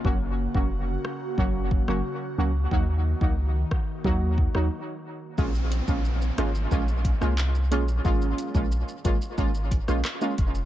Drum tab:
HH |----------------|----------------|--x---x---x---x-|--x---x---x---x-|
SH |----------------|----------------|xxxxxxxxxxxxxxxx|xxxxxxxxxxxxxxxx|
CP |----------------|----------------|------------x---|------------x---|
SD |------r----r----|------r----r----|------r----r----|-----------rr---|
BD |o--o----o-o-----|o--o--o-o-o-----|o--o----o-o-----|o--o--o-o-o---o-|